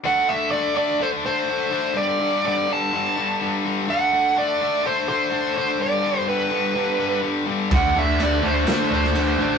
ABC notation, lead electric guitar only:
X:1
M:4/4
L:1/8
Q:1/4=125
K:G
V:1 name="Lead electric guitar"
f e d d c c3 | d2 d a4 z | f2 d2 c c2 c | d2 B4 z2 |
f e d c2 c3 |]